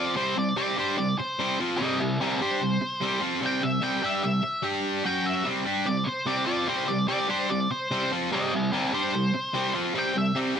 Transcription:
0.00 0.15 F3 medium
0.00 0.16 C4 medium
0.00 0.16 F4 medium
0.00 0.14 D5 loud
0.16 0.35 C3 medium
0.16 0.35 G3 medium
0.16 0.36 C4 medium
0.16 0.36 C5 medium
0.36 0.52 C3 medium
0.36 0.53 G3 medium
0.36 0.57 D5 medium
0.56 0.76 C3 medium
0.56 0.76 G3 medium
0.56 0.77 C4 medium
0.56 0.77 D5 loud
0.77 0.97 G3 medium
0.77 0.97 D4 medium
0.77 0.98 G4 medium
0.77 0.97 C5 medium
0.98 1.14 C3 medium
0.98 1.14 G3 medium
0.98 1.17 D5 medium
1.18 1.58 C5 medium
1.18 muted distorted electric guitar stroke medium
1.39 1.58 C3 medium
1.39 1.59 G3 medium
1.39 1.58 C4 medium
1.59 1.79 F3 medium
1.59 1.79 C4 medium
1.59 1.79 F4 medium
1.78 1.99 C3 medium
1.78 1.99 G3 medium
1.78 2.00 C4 medium
1.78 1.99 C5 medium
1.78 1.98 D#5 medium
2.00 2.16 C3 medium
2.00 2.16 G3 medium
2.00 2.19 E4 medium
2.00 2.20 C5 medium
2.20 2.40 C3 medium
2.20 2.40 G3 medium
2.20 2.41 C4 medium
2.20 2.40 G4 medium
2.20 2.41 A#4 loud
2.41 2.60 G3 medium
2.41 2.61 D4 medium
2.41 2.61 G4 medium
2.41 3.21 C5 medium
2.61 2.77 C3 medium
2.61 2.77 G3 medium
2.81 muted distorted electric guitar stroke medium
3.01 3.21 C3 medium
3.01 3.22 G3 medium
3.01 3.21 C4 medium
3.21 3.41 F3 medium
3.21 3.41 C4 medium
3.21 3.42 F4 medium
3.42 3.61 C3 medium
3.42 3.62 G3 medium
3.42 3.62 C4 loud
3.46 3.64 G5 medium
3.62 3.79 C3 medium
3.62 3.79 G3 medium
3.62 3.83 E5 medium
3.82 4.03 C3 medium
3.82 4.01 G3 medium
3.82 4.02 C4 medium
3.82 4.03 G5 loud
4.03 4.23 G3 medium
4.03 4.23 D4 medium
4.03 4.24 G4 medium
4.03 4.22 E5 medium
4.23 4.40 C3 medium
4.23 4.40 G3 medium
4.23 4.64 E5 medium
4.43 muted distorted electric guitar stroke medium
4.62 5.04 G3 medium
4.62 5.04 D4 medium
4.62 5.05 G4 medium
5.04 5.44 F#3 medium
5.04 5.45 C#4 medium
5.04 5.45 F#4 medium
5.04 5.26 G5 medium
5.26 5.46 E5 medium
5.45 5.66 C3 medium
5.45 5.64 G3 medium
5.45 5.66 C4 medium
5.66 5.86 G3 medium
5.66 5.87 D4 medium
5.66 5.87 G4 medium
5.86 6.03 C3 soft
5.86 6.04 G3 medium
5.86 6.07 D5 medium
6.04 6.26 C5 medium
6.04 muted distorted electric guitar stroke soft
6.27 6.47 C3 medium
6.27 6.47 G3 medium
6.27 6.46 C4 loud
6.27 6.45 D5 medium
6.46 6.68 F3 medium
6.46 6.68 C4 medium
6.46 6.68 F4 medium
6.46 6.67 D5 loud
6.67 6.87 C3 medium
6.67 6.87 G3 medium
6.67 6.89 C4 medium
6.67 6.88 C5 medium
6.88 7.05 C3 medium
6.88 7.06 G3 medium
6.88 7.07 D5 medium
7.08 7.29 C3 medium
7.08 7.28 G3 medium
7.08 7.29 C4 medium
7.08 7.29 D5 loud
7.29 7.50 G3 medium
7.29 7.50 D4 medium
7.29 7.50 G4 medium
7.29 7.50 C5 medium
7.50 7.67 C3 medium
7.50 7.67 G3 medium
7.50 7.70 D5 medium
7.71 8.11 C5 medium
7.71 muted distorted electric guitar stroke medium
7.91 8.11 C3 medium
7.91 8.12 G3 medium
7.91 8.11 C4 medium
8.12 8.31 F3 medium
8.12 8.31 C4 medium
8.12 8.32 F4 medium
8.31 8.52 C3 medium
8.31 8.52 G3 medium
8.31 8.52 C4 medium
8.31 8.53 C5 medium
8.31 8.53 D#5 medium
8.53 8.69 C3 medium
8.53 8.70 G3 medium
8.53 8.72 E4 medium
8.53 8.73 C5 medium
8.73 8.93 C3 medium
8.73 8.92 G3 medium
8.73 8.93 C4 medium
8.73 8.92 G4 medium
8.73 8.93 A#4 medium
8.93 9.13 G3 medium
8.93 9.13 D4 medium
8.93 9.13 G4 medium
8.93 9.73 C5 medium
9.14 9.30 C3 medium
9.14 9.31 G3 medium
9.34 muted distorted electric guitar stroke soft
9.53 9.74 C3 medium
9.53 9.74 G3 medium
9.53 9.73 C4 medium
9.74 9.94 F3 medium
9.74 9.94 C4 medium
9.74 9.95 F4 medium
9.95 10.13 C3 medium
9.95 10.13 G3 medium
9.95 10.15 C4 loud
9.99 10.17 G5 loud
10.15 10.31 C3 medium
10.15 10.32 G3 medium
10.15 10.37 E5 medium
10.36 10.56 C3 medium
10.36 10.55 G3 medium
10.36 10.56 C4 medium
10.56 10.60 G3 medium
10.56 10.60 D4 medium

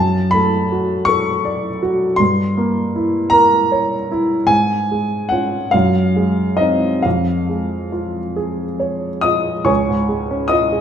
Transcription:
0.00 2.13 F#2 medium
0.00 0.32 A5 medium
0.31 0.94 A3 soft
0.31 1.06 B5 medium
0.72 1.30 F#4 soft
1.05 1.67 A4 soft
1.05 2.19 C#6 medium
1.45 2.05 D5 soft
1.83 2.20 F#4 soft
2.16 4.47 G2 medium
2.16 3.32 C6 medium
2.57 3.18 A#3 soft
2.96 3.57 E4 soft
3.30 3.95 A#4 medium
3.30 4.09 A#5 loud
3.72 4.35 C#5 soft
4.12 4.51 E4 medium
4.47 5.67 G#2 medium
4.47 5.30 G#5 medium
4.92 5.57 G#3 soft
5.29 5.69 C#4 soft
5.29 5.70 F4 soft
5.29 5.72 F#5 medium
5.71 7.01 F#2 medium
5.71 6.59 F5 medium
6.16 6.87 G#3 soft
6.57 7.01 C4 soft
6.57 7.01 D#4 soft
6.57 7.03 D#5 medium
7.02 9.66 F2 soft
7.02 9.25 F5 medium
7.49 8.19 G#3 soft
7.92 8.63 F4 soft
8.36 9.08 G#4 soft
8.80 9.51 C#5 soft
9.21 9.68 F4 soft
9.21 9.64 D#5 medium
9.21 9.67 D#6 medium
9.64 10.81 C#2 soft
9.64 10.47 C#5 soft
9.64 10.46 G#5 soft
9.64 10.50 C#6 medium
9.89 10.23 G#2 soft
10.09 10.43 G#3 soft
10.31 10.64 C#4 soft
10.48 10.81 F4 soft
10.48 10.81 D#5 medium
10.48 10.81 D#6 medium
10.72 10.81 G#4 soft

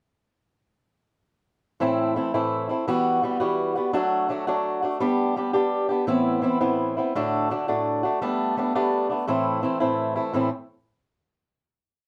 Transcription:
1.80 2.16 A2 medium
1.80 2.15 E3 medium
1.80 2.15 A3 medium
1.80 2.16 C4 medium
1.80 2.16 E4 medium
2.16 2.34 E3 medium
2.16 2.33 A3 medium
2.16 2.33 C4 medium
2.16 2.33 E4 medium
2.34 2.70 A2 medium
2.34 2.70 E3 medium
2.34 2.70 A3 medium
2.34 2.69 C4 medium
2.34 2.68 E4 medium
2.69 2.87 A3 soft
2.69 2.88 C4 soft
2.69 2.87 E4 medium
2.88 3.21 E3 medium
2.88 3.22 G3 medium
2.88 3.23 B3 medium
2.88 3.23 F#4 medium
3.22 3.40 E3 medium
3.22 3.40 G3 medium
3.22 3.39 B3 medium
3.22 3.39 F#4 medium
3.40 3.77 E3 medium
3.40 3.76 G3 medium
3.40 3.76 B3 medium
3.40 3.74 F#4 medium
3.76 3.93 G3 soft
3.76 3.94 B3 medium
3.76 3.93 F#4 medium
3.93 4.28 F#3 medium
3.93 4.29 A3 medium
3.93 4.29 D4 medium
3.93 4.30 F#4 medium
4.29 4.47 F#3 medium
4.29 4.46 A3 medium
4.29 4.47 D4 medium
4.29 4.46 F#4 medium
4.47 4.84 F#3 medium
4.47 4.82 A3 medium
4.47 4.83 D4 medium
4.47 4.81 F#4 medium
4.82 5.01 A3 medium
4.82 5.00 D4 soft
4.82 5.00 F#4 medium
5.00 5.35 G3 medium
5.00 5.36 B3 medium
5.00 5.36 D4 medium
5.00 5.37 G4 medium
5.36 5.54 G3 medium
5.36 5.54 B3 medium
5.36 5.53 D4 medium
5.36 5.52 G4 medium
5.53 5.90 G3 medium
5.53 5.90 B3 medium
5.53 5.89 D4 medium
5.53 5.88 G4 medium
5.89 6.07 B3 soft
5.89 6.07 D4 soft
5.89 6.07 G4 medium
6.07 6.43 A2 medium
6.07 6.40 E3 medium
6.07 6.41 B3 medium
6.07 6.42 C4 medium
6.07 6.43 E4 medium
6.42 6.60 E3 medium
6.42 6.60 B3 medium
6.42 6.59 C4 medium
6.42 6.60 E4 medium
6.61 6.97 A2 soft
6.61 6.97 E3 medium
6.61 6.97 B3 medium
6.61 6.96 C4 medium
6.61 6.96 E4 medium
6.97 7.15 B3 soft
6.97 7.15 C4 medium
6.97 7.15 E4 medium
7.15 7.51 A2 medium
7.15 7.49 D3 medium
7.15 7.51 A3 medium
7.15 7.50 D4 medium
7.15 7.51 F#4 medium
7.50 7.68 D3 medium
7.50 7.68 A3 medium
7.50 7.67 D4 medium
7.50 7.67 F#4 medium
7.68 8.04 A2 medium
7.68 8.04 D3 medium
7.68 8.05 A3 medium
7.68 8.03 D4 medium
7.68 8.02 F#4 medium
8.03 8.21 A3 soft
8.03 8.22 D4 soft
8.03 8.21 F#4 medium
8.22 8.56 G3 medium
8.22 8.57 A3 medium
8.22 8.57 B3 medium
8.22 8.58 D4 medium
8.57 8.75 G3 medium
8.57 8.75 A3 medium
8.57 8.74 B3 medium
8.57 8.74 D4 medium
8.75 9.11 G3 medium
8.75 9.11 A3 medium
8.75 9.10 B3 medium
8.75 9.08 D4 medium
9.09 9.27 A3 soft
9.09 9.28 B3 medium
9.09 9.28 D4 medium
9.28 9.63 A2 medium
9.28 9.62 E3 medium
9.28 9.64 A3 medium
9.28 9.62 C4 medium
9.28 9.64 E4 medium
9.62 9.80 E3 medium
9.62 9.79 A3 medium
9.62 9.80 C4 medium
9.62 9.79 E4 medium
9.80 10.17 A2 medium
9.80 10.34 E3 medium
9.80 10.16 A3 medium
9.80 10.17 C4 medium
9.80 10.15 E4 medium
10.16 10.35 A3 soft
10.16 10.33 C4 soft
10.16 10.34 E4 medium
10.33 10.48 A2 medium
10.33 10.49 E3 medium
10.33 10.49 A3 medium
10.33 10.49 C4 medium
10.33 10.49 E4 medium

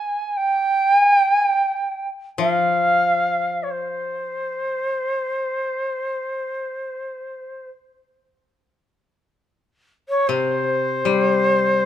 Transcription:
0.00 0.39 G#5 medium
0.37 1.00 G5 medium
1.00 1.12 G#5 medium
1.12 1.34 G5 medium
1.34 1.47 G#5 medium
1.47 2.08 G5 medium
2.38 5.76 F3 medium
2.38 3.65 F5 medium
3.63 3.72 C#5 medium
3.71 7.70 C5 medium
10.09 10.29 C#5 medium
10.28 11.85 C3 medium
10.28 11.85 C5 medium
11.05 11.85 G3 soft

